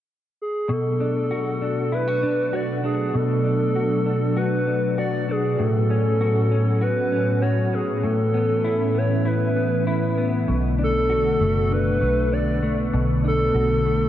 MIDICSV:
0, 0, Header, 1, 5, 480
1, 0, Start_track
1, 0, Key_signature, 2, "minor"
1, 0, Tempo, 612245
1, 542, Time_signature, 4, 2, 24, 8
1, 11045, End_track
2, 0, Start_track
2, 0, Title_t, "Soft synth lead"
2, 0, Program_c, 0, 80
2, 325, Note_on_c, 0, 68, 74
2, 566, Note_on_c, 0, 69, 87
2, 578, Note_off_c, 0, 68, 0
2, 1520, Note_on_c, 0, 71, 100
2, 1532, Note_off_c, 0, 69, 0
2, 1998, Note_on_c, 0, 74, 89
2, 2010, Note_off_c, 0, 71, 0
2, 2230, Note_off_c, 0, 74, 0
2, 2238, Note_on_c, 0, 68, 82
2, 2479, Note_on_c, 0, 69, 97
2, 2490, Note_off_c, 0, 68, 0
2, 3429, Note_on_c, 0, 71, 100
2, 3440, Note_off_c, 0, 69, 0
2, 3905, Note_off_c, 0, 71, 0
2, 3912, Note_on_c, 0, 74, 91
2, 4161, Note_on_c, 0, 68, 82
2, 4173, Note_off_c, 0, 74, 0
2, 4410, Note_on_c, 0, 69, 97
2, 4422, Note_off_c, 0, 68, 0
2, 5348, Note_on_c, 0, 71, 104
2, 5360, Note_off_c, 0, 69, 0
2, 5814, Note_on_c, 0, 73, 91
2, 5826, Note_off_c, 0, 71, 0
2, 6068, Note_on_c, 0, 68, 78
2, 6079, Note_off_c, 0, 73, 0
2, 6302, Note_off_c, 0, 68, 0
2, 6307, Note_on_c, 0, 69, 95
2, 7039, Note_on_c, 0, 73, 85
2, 7051, Note_off_c, 0, 69, 0
2, 7266, Note_on_c, 0, 71, 91
2, 7278, Note_off_c, 0, 73, 0
2, 7984, Note_off_c, 0, 71, 0
2, 8495, Note_on_c, 0, 69, 90
2, 9193, Note_on_c, 0, 71, 104
2, 9205, Note_off_c, 0, 69, 0
2, 9668, Note_on_c, 0, 74, 91
2, 9680, Note_off_c, 0, 71, 0
2, 10025, Note_off_c, 0, 74, 0
2, 10407, Note_on_c, 0, 69, 91
2, 11045, Note_off_c, 0, 69, 0
2, 11045, End_track
3, 0, Start_track
3, 0, Title_t, "Clean electric guitar"
3, 0, Program_c, 1, 27
3, 542, Note_on_c, 1, 47, 63
3, 787, Note_on_c, 1, 62, 48
3, 1026, Note_on_c, 1, 66, 51
3, 1258, Note_off_c, 1, 62, 0
3, 1268, Note_on_c, 1, 62, 48
3, 1504, Note_off_c, 1, 66, 0
3, 1507, Note_on_c, 1, 64, 52
3, 1628, Note_off_c, 1, 64, 0
3, 1628, Note_on_c, 1, 66, 47
3, 1737, Note_off_c, 1, 62, 0
3, 1747, Note_on_c, 1, 62, 50
3, 1975, Note_off_c, 1, 66, 0
3, 1984, Note_on_c, 1, 66, 58
3, 2216, Note_off_c, 1, 62, 0
3, 2225, Note_on_c, 1, 62, 46
3, 2453, Note_off_c, 1, 47, 0
3, 2463, Note_on_c, 1, 47, 71
3, 2689, Note_off_c, 1, 62, 0
3, 2698, Note_on_c, 1, 62, 52
3, 2941, Note_off_c, 1, 66, 0
3, 2944, Note_on_c, 1, 66, 52
3, 3173, Note_off_c, 1, 62, 0
3, 3182, Note_on_c, 1, 62, 47
3, 3420, Note_off_c, 1, 66, 0
3, 3423, Note_on_c, 1, 66, 54
3, 3653, Note_off_c, 1, 62, 0
3, 3663, Note_on_c, 1, 62, 51
3, 3901, Note_off_c, 1, 66, 0
3, 3904, Note_on_c, 1, 66, 57
3, 4133, Note_off_c, 1, 62, 0
3, 4143, Note_on_c, 1, 62, 49
3, 4379, Note_off_c, 1, 47, 0
3, 4382, Note_on_c, 1, 45, 73
3, 4430, Note_off_c, 1, 62, 0
3, 4627, Note_on_c, 1, 61, 48
3, 4863, Note_off_c, 1, 66, 0
3, 4866, Note_on_c, 1, 66, 54
3, 5102, Note_off_c, 1, 61, 0
3, 5105, Note_on_c, 1, 61, 48
3, 5337, Note_off_c, 1, 66, 0
3, 5340, Note_on_c, 1, 66, 60
3, 5579, Note_off_c, 1, 61, 0
3, 5582, Note_on_c, 1, 61, 53
3, 5816, Note_off_c, 1, 66, 0
3, 5820, Note_on_c, 1, 66, 57
3, 6057, Note_off_c, 1, 61, 0
3, 6061, Note_on_c, 1, 61, 49
3, 6291, Note_off_c, 1, 45, 0
3, 6300, Note_on_c, 1, 45, 69
3, 6535, Note_off_c, 1, 61, 0
3, 6539, Note_on_c, 1, 59, 53
3, 6773, Note_off_c, 1, 66, 0
3, 6776, Note_on_c, 1, 64, 55
3, 7010, Note_off_c, 1, 59, 0
3, 7013, Note_on_c, 1, 59, 52
3, 7245, Note_off_c, 1, 64, 0
3, 7254, Note_on_c, 1, 64, 57
3, 7494, Note_off_c, 1, 59, 0
3, 7497, Note_on_c, 1, 59, 51
3, 7728, Note_off_c, 1, 64, 0
3, 7737, Note_on_c, 1, 64, 56
3, 7975, Note_off_c, 1, 59, 0
3, 7978, Note_on_c, 1, 59, 51
3, 8213, Note_off_c, 1, 45, 0
3, 8216, Note_on_c, 1, 47, 68
3, 8268, Note_off_c, 1, 64, 0
3, 8451, Note_off_c, 1, 59, 0
3, 8454, Note_on_c, 1, 62, 53
3, 8699, Note_on_c, 1, 66, 62
3, 8940, Note_on_c, 1, 57, 51
3, 9169, Note_off_c, 1, 62, 0
3, 9179, Note_on_c, 1, 62, 56
3, 9412, Note_off_c, 1, 57, 0
3, 9415, Note_on_c, 1, 57, 51
3, 9648, Note_off_c, 1, 62, 0
3, 9657, Note_on_c, 1, 62, 51
3, 9894, Note_off_c, 1, 57, 0
3, 9897, Note_on_c, 1, 57, 52
3, 10130, Note_off_c, 1, 47, 0
3, 10140, Note_on_c, 1, 47, 74
3, 10372, Note_off_c, 1, 62, 0
3, 10381, Note_on_c, 1, 62, 58
3, 10616, Note_off_c, 1, 66, 0
3, 10619, Note_on_c, 1, 66, 55
3, 10858, Note_off_c, 1, 57, 0
3, 10861, Note_on_c, 1, 57, 53
3, 11045, Note_off_c, 1, 47, 0
3, 11045, Note_off_c, 1, 57, 0
3, 11045, Note_off_c, 1, 62, 0
3, 11045, Note_off_c, 1, 66, 0
3, 11045, End_track
4, 0, Start_track
4, 0, Title_t, "Analog synth pad"
4, 0, Program_c, 2, 89
4, 535, Note_on_c, 2, 47, 78
4, 538, Note_on_c, 2, 54, 74
4, 538, Note_on_c, 2, 62, 86
4, 540, Note_on_c, 2, 57, 71
4, 4347, Note_off_c, 2, 47, 0
4, 4349, Note_off_c, 2, 62, 0
4, 4350, Note_off_c, 2, 57, 0
4, 4381, Note_on_c, 2, 59, 66
4, 4385, Note_on_c, 2, 45, 80
4, 4387, Note_on_c, 2, 61, 87
4, 6269, Note_off_c, 2, 54, 0
4, 6302, Note_on_c, 2, 57, 71
4, 6306, Note_on_c, 2, 52, 76
4, 8190, Note_off_c, 2, 59, 0
4, 8192, Note_off_c, 2, 45, 0
4, 8193, Note_off_c, 2, 61, 0
4, 8203, Note_off_c, 2, 57, 0
4, 8205, Note_off_c, 2, 52, 0
4, 8229, Note_on_c, 2, 50, 76
4, 8234, Note_on_c, 2, 59, 94
4, 8235, Note_on_c, 2, 57, 73
4, 10127, Note_off_c, 2, 57, 0
4, 10136, Note_on_c, 2, 57, 76
4, 11045, Note_off_c, 2, 50, 0
4, 11045, Note_off_c, 2, 57, 0
4, 11045, Note_off_c, 2, 59, 0
4, 11045, End_track
5, 0, Start_track
5, 0, Title_t, "Fingered electric bass"
5, 0, Program_c, 3, 33
5, 8224, Note_on_c, 3, 35, 95
5, 8911, Note_off_c, 3, 35, 0
5, 8939, Note_on_c, 3, 30, 74
5, 9397, Note_off_c, 3, 30, 0
5, 9419, Note_on_c, 3, 35, 87
5, 10109, Note_off_c, 3, 35, 0
5, 10143, Note_on_c, 3, 35, 85
5, 10598, Note_off_c, 3, 35, 0
5, 10619, Note_on_c, 3, 35, 76
5, 11045, Note_off_c, 3, 35, 0
5, 11045, End_track
0, 0, End_of_file